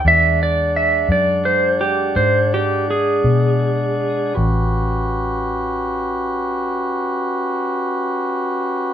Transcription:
<<
  \new Staff \with { instrumentName = "Electric slide guitar" } { \time 12/8 \key e \dorian \tempo 4. = 52 e''8 d''8 e''8 d''8 c''8 g'8 c''8 g'8 gis'2 | r1. | }
  \new Staff \with { instrumentName = "Tonewheel organ" } { \time 12/8 \key e \dorian <gis d' d'' fis''>1. | <cis' fis' g' b'>1. | }
  \new Staff \with { instrumentName = "Fingered electric bass" } { \clef bass \time 12/8 \key e \dorian e,4. fis,4. gis,4. b,4. | a,,1. | }
>>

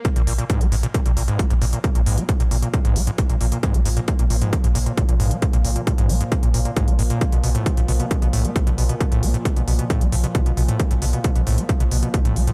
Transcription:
<<
  \new Staff \with { instrumentName = "Ambient pad" } { \clef bass \time 4/4 \key f \phrygian \tempo 4 = 134 <bes, f>1~ | <bes, f>1~ | <bes, f>1~ | <bes, f>1~ |
<bes, f>1~ | <bes, f>1~ | <bes, f>1 | }
  \new Staff \with { instrumentName = "Acid bass" } { \clef bass \time 4/4 \key f \phrygian bes,16 bes,16 bes,16 bes,16 aes,16 bes16 aes,16 bes,16 bes,16 bes,16 bes,16 aes,16 bes16 aes,16 bes,16 bes,16 | bes,16 bes,16 aes,16 bes16 aes,16 bes,16 bes,16 bes,16 bes,16 aes,16 bes16 aes,16 bes,16 bes,16 bes,16 bes,16 | aes,16 bes16 aes,16 bes,16 bes,16 bes,16 bes,16 aes,16 bes16 aes,16 bes,16 bes,16 bes,16 bes,16 aes,16 bes16 | aes,16 bes,16 bes,16 bes,16 bes,16 aes,16 bes16 aes,16 bes,16 bes,16 bes,16 bes,16 aes,16 bes16 aes,16 bes,16 |
ces16 ces16 ces16 a,16 ces'16 a,16 ces16 ces16 ces16 ces16 a,16 ces'16 a,16 ces16 ces16 ces16 | ces16 a,16 ces'16 a,16 ces16 ces16 ces16 ces16 a,16 ces'16 a,16 ces16 ces16 ces16 ces16 a,16 | ces'16 a,16 ces16 ces16 ces16 ces16 a,16 ces'16 a,16 ces16 ces16 ces16 ces16 a,16 ces'16 a,16 | }
  \new Staff \with { instrumentName = "Sub bass" } { \clef bass \time 4/4 \key f \phrygian r16 bes,,16 bes,,16 r8 bes,,16 bes,,16 r8 bes,,16 bes,,16 r16 bes,,16 bes,,16 bes,,16 r16 | r16 bes,,16 bes,,16 r8 bes,,16 bes,,16 r8 bes,,16 bes,,16 r16 bes,,16 bes,,16 bes,,16 r16 | r16 bes,,16 bes,,16 r8 bes,,16 bes,,16 r8 bes,,16 bes,,16 r16 bes,,16 bes,,16 bes,,16 r16 | r16 bes,,16 bes,,16 r8 bes,,16 bes,,16 r8 bes,,16 bes,,16 r16 bes,,16 bes,,16 bes,,16 r16 |
r16 ces,16 ces,16 r8 ces,16 ces,16 r8 ces,16 ces,16 r16 ces,16 ces,16 ces,16 r16 | r16 ces,16 ces,16 r8 ces,16 ces,16 r8 ces,16 ces,16 r16 ces,16 ces,16 ces,16 r16 | r16 ces,16 ces,16 r8 ces,16 ces,16 r8 ces,16 ces,16 r16 ces,16 ces,16 ces,16 r16 | }
  \new DrumStaff \with { instrumentName = "Drums" } \drummode { \time 4/4 <hh bd>16 hh16 hho16 hh16 <hh bd>16 hh16 hho16 hh16 <hh bd>16 hh16 hho16 hh16 <hh bd>16 hh16 hho16 hh16 | <hh bd>16 hh16 hho16 hh16 <hh bd>16 hh16 hho16 hh16 <hh bd>16 hh16 hho16 hh16 <hh bd>16 hh16 hho16 hh16 | <hh bd>16 hh16 hho16 hh16 <hh bd>16 hh16 hho16 hh16 <hh bd>16 hh16 hho16 hh16 <hh bd>16 hh16 hho16 hh16 | <hh bd>16 hh16 hho16 hh16 <hh bd>16 hh16 hho16 hh16 <hh bd>16 hh16 hho16 hh16 <hh bd>16 hh16 hho16 hh16 |
<hh bd>16 hh16 hho16 hh16 <hh bd>16 hh16 hho16 hh16 <hh bd>16 hh16 hho16 hh16 <hh bd>16 hh16 hho16 hh16 | <hh bd>16 hh16 hho16 hh16 <hh bd>16 hh16 hho16 hh16 <hh bd>16 hh16 hho16 hh16 <hh bd>16 hh16 hho16 hh16 | <hh bd>16 hh16 hho16 hh16 <hh bd>16 hh16 hho16 hh16 <hh bd>16 hh16 hho16 hh16 <hh bd>16 hh16 hho16 hh16 | }
>>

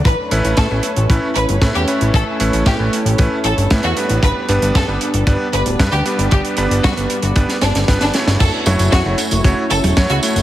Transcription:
<<
  \new Staff \with { instrumentName = "Violin section" } { \time 4/4 \key g \lydian \tempo 4 = 115 b'8. r16 a'8 r4 b'8 r16 g'8 r16 | a'8. r16 g'8 r4 a'8 r16 fis'8 r16 | b'8. r16 a'8 r4 b'8 r16 g'8 r16 | g'8. r16 fis'8 r4 d'8 r16 d'8 r16 |
a'8. r16 fis'8 r4 a'8 r16 fis'8 r16 | }
  \new Staff \with { instrumentName = "Analog synth pad" } { \time 4/4 \key g \lydian << { <a cis' e' cis''>1~ | <a cis' e' cis''>1 | <g b d' d''>1~ | <g b d' d''>1 |
<a cis' e' cis''>1 | } \\ { b'1 | a'1 | b'1~ | b'1 |
fis'1 | } >> }
  \new Staff \with { instrumentName = "Electric grand piano" } { \time 4/4 \key g \lydian r8 <a cis' e' b'>8. <a cis' e' b'>16 r8 <a cis' e' b'>16 r8. <a cis' e' b'>8 <a cis' e' b'>8~ | <a cis' e' b'>8 <a cis' e' b'>8. <a cis' e' b'>16 r8 <a cis' e' b'>16 r8. <a cis' e' b'>8 <g b d' b'>8~ | <g b d' b'>8 <g b d' b'>8. <g b d' b'>16 r8 <g b d' b'>16 r8. <g b d' b'>8 <g b d' b'>8~ | <g b d' b'>8 <g b d' b'>8. <g b d' b'>16 r8 <g b d' b'>16 r8. <g b d' b'>8 <a e' fis' cis''>8~ |
<a e' fis' cis''>8 <a e' fis' cis''>8. <a e' fis' cis''>16 r8 <a e' fis' cis''>16 r8. <a e' fis' cis''>8 <a e' fis' cis''>8 | }
  \new Staff \with { instrumentName = "Analog synth bass" } { \clef bass \time 4/4 \key g \lydian a,,16 r16 a,,16 a,,16 a,16 a,,16 r16 a,,16 a,,16 r16 a,,16 g,,16 a,16 e,16 r16 a,,16 | a,,16 r16 a,,16 a,,16 a,16 a,,16 r16 a,,16 a,,16 r16 a,,16 g,,16 a,16 e,16 r16 a,,16 | g,,16 r16 g,,16 g,,16 g,16 g,,16 r16 g,,16 g,,16 r16 g,,16 d,,16 g,16 d,16 r16 g,,16 | g,,16 r16 g,,16 g,,16 g,16 g,,16 r16 g,,16 g,,16 r16 g,,16 g,,16 g,,16 g,,16 r16 g,,16 |
fis,,16 r16 fis,,16 fis,,16 fis,16 fis,,16 r16 fis,,16 fis,,16 r16 fis,,16 e,,16 fis,16 cis,16 r16 fis,,16 | }
  \new DrumStaff \with { instrumentName = "Drums" } \drummode { \time 4/4 <hh bd>8 hh16 hh16 <hh bd sn>8 hh16 hh16 <hh bd>8 hh16 hh16 <hh bd sn>16 hh16 hh16 hh16 | <hh bd>8 hh16 hh16 <hh bd sn>8 hh16 hh16 <hh bd>8 hh16 hh16 <hh bd sn>16 hh16 hh16 hh16 | <hh bd>8 hh16 hh16 <hh bd sn>8 hh16 hh16 <hh bd>8 hh16 hh16 <hh bd sn>16 hh16 hh16 hh16 | <hh bd>16 hh16 hh16 hh16 <hh bd sn>16 hh16 hh16 hh16 <hh bd>16 <hh sn>16 <hh sn>16 <hh sn>16 <hh bd sn>16 <hh sn>16 <hh sn>16 <hh sn>16 |
<cymc hh bd tamb>8 <hh tamb tommh>16 <hh tamb>16 <hh bd sn tamb>8 <hh tamb>16 <hh tamb>16 <hh bd tamb>8 <hh tamb>16 <hh tamb tommh>16 <hh bd sn tamb>16 hh16 <hh tamb>16 <hh tamb>16 | }
>>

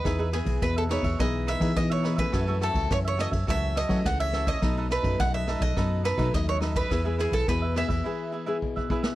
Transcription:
<<
  \new Staff \with { instrumentName = "Mandolin" } { \time 4/4 \key e \major \tempo 4 = 105 b'8 gis'8 b'16 a'16 cis''8 dis''8 e''8 dis''16 cis''8 b'16~ | b'8 a'8 cis''16 cis''16 dis''8 e''8 dis''8 fis''16 e''8 dis''16~ | dis''8 b'8 fis''16 e''8 dis''8. b'8 dis''16 cis''8 b'16~ | b'8 gis'16 a'16 b'8 e''2 r8 | }
  \new Staff \with { instrumentName = "Cavaquinho" } { \time 4/4 \key e \major <dis' gis' b' e''>16 <dis' gis' b' e''>16 <gis' b' e''>8. <gis' b' e''>16 <dis' gis' b' e''>16 <gis' b' e''>16 <dis' gis' b' e''>8 <dis' gis' b' e''>16 <dis' gis' b' e''>16 r16 <gis' b' e''>16 <dis' gis' b' e''>16 <gis' b' e''>16 | <fis' a' cis'' e''>16 <fis' a' cis'' e''>16 <fis' a' cis'' e''>8. <a' cis'' e''>16 <fis' a' cis'' e''>16 <a' cis'' e''>16 <fis' a' cis'' e''>8 <fis' a' cis'' e''>16 <fis' a' cis'' e''>16 r16 <a' cis'' e''>16 <fis' a' cis'' e''>16 <a' cis'' e''>16 | <dis' a' b' dis''>16 <dis' a' b' dis''>16 <dis' a' b' dis''>8. <a' b' dis''>16 <dis' a' b' dis''>16 <a' b' dis''>16 <dis' a' b' dis''>8 <dis' a' b' dis''>16 <dis' a' b' dis''>16 r16 <a' b' dis''>16 <dis' a' b' dis''>16 <a' b' dis''>16 | <e' gis' b' e''>16 <e' gis' b' e''>16 <e' gis' b' e''>8. <gis' b' e''>16 <e' gis' b' e''>16 <gis' b' e''>16 <e' gis' b' e''>8 <e' gis' b' e''>16 <e' gis' b' e''>16 r16 <gis' b' e''>16 <e' gis' b' e''>16 <gis' b' e''>16 | }
  \new Staff \with { instrumentName = "Nylon-string guitar" } { \time 4/4 \key e \major << { <b dis' gis'>16 r16 <b gis'>4 <b dis' gis'>16 r16 <b dis' gis'>8 r16 <b dis' gis'>4 <e a cis'>16~ | <e a cis'>16 <e a cis'>8. <e a cis'>8 <e a cis'>16 r16 <e a cis'>8 r16 <e a cis'>8. <e a cis'>8 | <fis a dis'>8 r16 <fis a dis'>8. <fis a dis'>8 <fis a dis'>8 r16 <fis a dis'>8. <fis a dis'>8 | <b e' gis'>16 <b e' gis'>8. <b e' gis'>16 r16 <b e' gis'>16 r16 <b e' gis'>8 r16 <b e' gis'>8. <b e' gis'>8 | } \\ { e4 b,4 e4 b,4 | fis,4 cis4 fis,4 cis4 | b,4 fis,4 b,4 fis,4 | e4 b,4 e4 b,4 | } >> }
  \new Staff \with { instrumentName = "FM bass" } { \clef bass \time 4/4 \key e \major e,8. b,,16 e,8. e,16 b,,8. e16 e4 | fis,8. cis,16 fis,8. fis,16 cis,8. fis16 cis,4 | b,,8. fis,16 b,,8. b,,16 fis,8. b,16 dis,4 | e,8. b,,16 e,8. e,16 r2 | }
  \new DrumStaff \with { instrumentName = "Drums" } \drummode { \time 4/4 <bd cymr ss>8 <cymr ss>16 <bd cymr>16 <bd cymr ss>8 <cymr ss>16 <bd cymr>16 <bd cymr ss>8 <cymr ss>16 <bd cymr>16 <bd cymr ss>8 <cymr ss>16 <bd cymr>16 | <bd cymr ss>8 <cymr ss>16 <bd cymr>16 <bd cymr ss>8 <cymr ss>16 <bd cymr>16 <bd cymr ss>8 <cymr ss>16 <bd cymr>16 <bd cymr ss>8 <cymr ss>16 <bd cymr>16 | <bd cymr ss>8 <cymr ss>16 <bd cymr>16 <bd cymr ss>8 <cymr ss>16 <bd cymr>16 <bd cymr ss>8 <cymr ss>16 <bd cymr>16 <bd cymr ss>8 <cymr ss>16 <bd cymr>16 | <bd cymr ss>8 <cymr ss>16 <bd cymr>16 <bd cymr ss>8 <cymr ss>16 <bd cymr>16 r4 bd16 bd16 bd16 sn16 | }
>>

